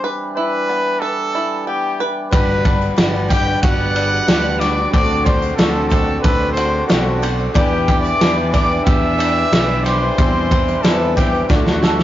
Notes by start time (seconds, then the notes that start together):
Already playing: E3 G3 C4 D4
0.04 B4
0.36 E4 B4
0.69 B3
1.00 A4 B4 A5
1.35 E4
1.67 B3 G4 G5
2.00 B4
2.30 G1 G2 G3 D4 F#4 G4 B4 D5 B5, kick, ride
2.64 G3 D4 F#4 B4, kick, ride
2.82 tambourine
2.96 G1 G3 D4 F#4 B4 D5, snare, ride, tambourine
3.14 tambourine
3.28 G3 D4 F#4 G4 B4 G5, kick, snare, ride, tambourine
3.32 G6
3.46 D4 F#4 B4
3.62 G1 G3 D4 F#4 B4 D5 F#5 F#6, kick, ride
3.94 G3 D4 F#4 B4, ride, tambourine
4.27 D2 G3 D4 F#4 G4 B4 D5, snare, ride, tambourine
4.60 G3 D4 F#4 B4 D5 D6, snare, ride, tambourine
4.76 D4 F#4 B4
4.91 D2 D3 A3 C4 D4 F#4 A4 D5 D6, kick, ride
4.95 D3 C4 F#4
5.25 A3 C4 F#4 A4 C5 D5 C6, kick, ride
5.42 tambourine
5.56 D2 D3 A3 C4 D4 F#4 A4 D5 A5, snare, ride, tambourine
5.88 A3 C4 F#4 A4 A5, kick, ride, tambourine
6.07 C4 F#4 A4
6.22 D2 C4 D4 F#4 A4 B4 D5 B5, kick, ride
6.53 A3 C4 C5 C6, tambourine
6.57 F#4 A4, ride
6.87 B1 D3 A3 C4 D4 F#4 A4 D5 F#5, snare, ride, tambourine
7.21 A3 C4 F#4 A4 C5, ride, tambourine
7.38 C4 F#4 A4
7.53 E2 E3 G3 B3 D4 E4 G4 B4 D5 G5, kick, ride
7.87 G3 D4 E4 G4 B4, kick, ride
8.02 D5 D6, tambourine
8.19 E2 E3 G3 B3 D4 E4 G4 B4 D5, snare, ride, tambourine
8.51 G3 D4 D5 D6, kick, snare, ride, tambourine
8.55 E4 B4
8.70 D4 E4 B4
8.85 E2 B3 D4 E4 G4 D5 E5 E6, kick, ride
9.19 G3 D4 E4 B4, ride, tambourine
9.52 B1 E3 G3 B3 D4 E4 G4 B4 D5, snare, ride, tambourine
9.84 G3 D4 E4 G4 B4 C5 C6, snare, ride, tambourine
10.00 D4 E4 B4
10.17 E2 E3 G3 C4 D4 E4 C5 E5, kick, ride, tambourine
10.50 G3 C4 E4 C5, kick, ride
10.68 tambourine
10.82 E2 E3 G3 C4 E4 A4 B4 E5 A5, snare, ride, tambourine
11.15 G3 C4 E4 G4 B4 G5, kick, snare, ride, tambourine
11.33 C4 E4 B4, tambourine
11.49 D2 D3 F#3 A3 D4 F#4 A4 D5 F#5, kick, snare
11.66 snare, tambourine
11.83 A3 D4 F#4 A4, snare, tambourine
11.99 snare